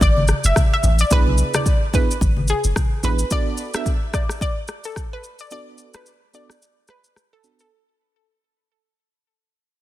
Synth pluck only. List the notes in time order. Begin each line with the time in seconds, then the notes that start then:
0.02 D5
0.46 E5
0.74 E5
1.01 D5
1.12 B4
1.55 D5
1.95 B4
2.50 G#4
3.05 B4
3.32 D5
3.76 E5
4.15 D5
4.42 D5
4.85 A4
5.13 B4
5.41 D5
5.52 D5
5.96 B4
6.35 D5
6.90 B4
7.33 A4
7.61 A4